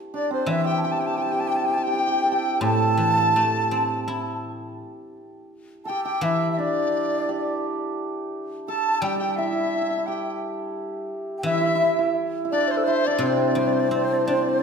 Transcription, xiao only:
0.16 0.31 D5 medium
0.33 0.52 C5 medium
0.51 0.67 E5 medium
0.68 0.77 G5 medium
0.77 0.87 A5 medium
0.85 2.65 G5 medium
2.64 4.44 A5 loud
5.85 5.90 A5 medium
5.89 6.07 G5 medium
6.07 6.25 G5 medium
6.23 6.51 E5 medium
6.52 6.62 E5 medium
6.60 7.64 D5 medium
8.69 9.06 A5 medium
9.04 9.21 G5 medium
9.21 9.40 G5 medium
9.38 10.42 E5 medium
11.38 11.46 G5 medium
11.44 12.15 E5 loud
12.52 12.69 D5 medium
12.68 12.89 C5 medium
12.87 13.07 E5 medium
13.05 13.24 D5 medium
13.23 14.63 C5 medium

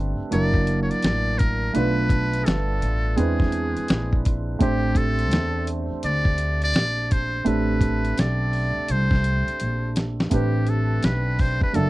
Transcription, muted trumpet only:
0.33 0.79 D5 loud
0.83 0.92 C#5 medium
0.91 1.40 D5 loud
1.39 1.76 A#4 loud
1.75 2.44 B4 loud
2.43 2.46 G#4 medium
2.43 3.18 A4 medium
3.17 4.24 G#4 medium
4.62 4.99 G4 loud
4.97 5.68 A4 loud
6.05 6.59 D5 loud
6.64 7.13 D5 loud
7.12 7.49 C5 loud
7.47 8.21 B4 medium
8.20 8.93 D5 loud
8.91 9.97 C5 medium
10.33 10.71 G4 medium
10.69 11.06 A4 medium
11.05 11.42 B4 medium
11.41 11.63 C5 medium
11.63 11.77 B4 medium
11.75 11.90 A4 loud

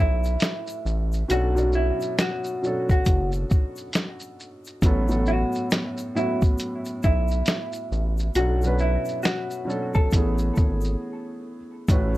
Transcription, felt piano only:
0.00 1.31 A2 medium
0.00 1.32 A3 medium
0.00 1.30 C#4 medium
0.00 1.32 F#4 medium
0.00 1.31 A4 medium
0.00 0.32 B4 medium
1.28 1.47 B2 medium
1.28 1.47 F#3 medium
1.28 1.48 C#4 medium
1.28 1.48 D4 medium
1.33 1.49 A4 medium
1.55 2.26 B2 medium
1.55 2.26 F#3 medium
1.55 2.27 C#4 medium
1.55 2.27 D4 medium
1.55 2.28 F#4 medium
2.62 3.83 B2 medium
2.62 3.83 F#3 medium
2.62 3.84 C#4 medium
2.62 3.84 D4 medium
2.67 3.85 A4 medium
4.82 5.00 A2 medium
4.82 5.01 F#3 medium
4.82 5.01 B3 medium
4.82 5.02 C#4 medium
4.87 5.02 A4 medium
5.08 5.79 A2 medium
5.08 5.79 F#3 medium
5.08 5.80 B3 medium
5.08 5.80 C#4 medium
5.12 5.81 A4 medium
6.15 7.36 A2 medium
6.15 7.36 F#3 medium
6.15 7.37 B3 medium
6.15 7.37 C#4 medium
6.19 7.38 F#4 medium
8.35 8.53 B2 medium
8.35 8.54 F#3 medium
8.35 8.54 C#4 medium
8.35 8.55 D4 medium
8.39 8.55 A4 medium
8.63 9.33 B2 medium
8.63 9.33 F#3 medium
8.63 9.34 C#4 medium
8.63 9.35 D4 medium
8.67 9.35 B4 medium
9.65 10.10 B2 medium
9.65 10.11 F#3 medium
9.65 10.12 C#4 medium
9.65 10.12 D4 medium
9.69 10.13 A4 medium
10.14 11.56 E3 medium
10.14 11.56 A3 medium
10.14 11.57 B3 medium
10.14 11.57 C#4 medium
10.18 11.58 G#4 medium
11.88 12.06 A2 medium
11.88 12.07 A3 medium
11.88 12.07 C#4 medium
11.88 12.08 F#4 medium
11.93 12.08 B4 medium

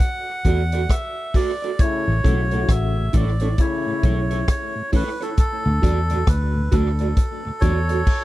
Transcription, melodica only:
0.00 0.95 F#5 loud
0.91 1.36 E5 loud
1.36 1.81 D5 medium
1.80 2.72 C#5 loud
2.70 3.16 E5 loud
3.16 3.61 D5 medium
3.61 4.49 C#5 medium
4.50 4.91 C#5 medium
4.95 5.23 B4 medium
5.22 5.37 A4 medium
5.39 6.31 A4 loud
6.29 6.74 B4 medium
6.73 8.24 A4 medium
7.61 8.24 C#5 loud

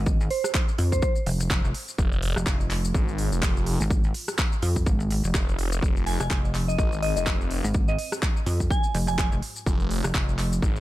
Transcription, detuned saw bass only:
1.98 2.34 F1 loud
2.94 3.30 G#1 loud
3.32 3.78 F1 medium
5.34 5.81 F1 loud
5.82 6.18 F1 loud
6.78 7.14 G#1 loud
7.16 7.62 F1 loud
9.66 10.02 F1 loud
10.62 10.80 G#1 loud

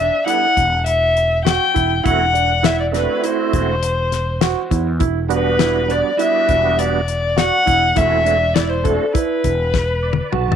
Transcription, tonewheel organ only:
0.26 0.47 G3 medium
0.26 0.47 B3 soft
0.26 0.47 D4 soft
0.26 0.48 A4 medium
2.05 2.25 A3 medium
2.05 2.26 C4 medium
2.05 2.26 E4 medium
2.05 2.26 F#4 medium
2.92 3.76 A3 medium
2.92 3.76 C4 medium
2.92 3.76 E4 medium
2.92 3.76 F#4 medium
5.29 6.12 G3 medium
5.29 6.13 B3 medium
5.29 6.13 D4 medium
5.29 6.13 F#4 medium
6.17 7.01 G3 medium
6.17 7.01 B3 medium
6.17 7.02 D4 medium
6.17 7.02 F#4 medium
7.97 8.38 A3 medium
7.97 8.38 C4 soft
7.97 8.38 E4 soft
7.97 8.39 F#4 medium
8.83 9.05 A3 medium
8.83 9.05 C4 medium
8.83 9.06 E4 medium
8.83 9.06 F#4 medium
10.03 10.30 D5 medium
10.31 10.56 A5 medium

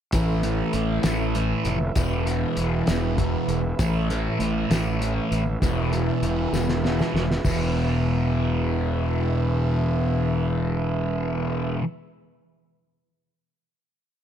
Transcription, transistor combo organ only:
0.12 1.95 A3 medium
0.12 1.94 C#4 medium
0.12 7.41 E4 medium
0.12 1.94 B4 medium
0.12 5.58 E5 medium
1.96 3.78 G#3 medium
1.96 3.78 B3 medium
1.96 5.59 B4 medium
3.79 5.60 A3 medium
3.79 5.60 C#4 medium
5.61 7.43 G#3 medium
5.61 7.43 B3 medium
5.61 7.43 B4 medium
5.61 7.43 E5 medium
7.44 11.75 G#3 medium
7.44 11.75 B3 medium
7.44 11.75 E4 medium
7.44 11.75 B4 medium
7.44 11.75 E5 medium

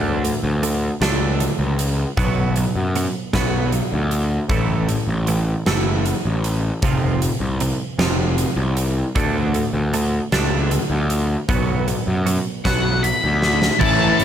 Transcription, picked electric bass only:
0.00 0.31 D2 medium
0.44 0.89 D2 medium
1.01 1.46 C#2 medium
1.59 2.04 C#2 medium
2.18 2.63 B1 medium
2.76 3.06 F#2 medium
3.34 3.79 B1 medium
3.93 4.38 D2 medium
4.49 4.95 A1 medium
5.08 5.53 A1 medium
5.67 6.12 F#1 medium
6.25 6.70 A1 medium
6.83 7.28 F1 medium
7.40 7.71 C2 medium
7.98 8.44 F1 medium
8.56 9.02 C2 medium
9.16 9.61 D2 loud
9.73 10.19 D2 medium
10.32 10.77 C#2 medium
10.90 11.35 D2 medium
11.49 11.94 B1 medium
12.07 12.37 F#2 medium
12.65 13.10 B1 medium
13.24 13.68 D2 medium
13.82 14.11 A1 medium
14.20 14.24 A1 medium

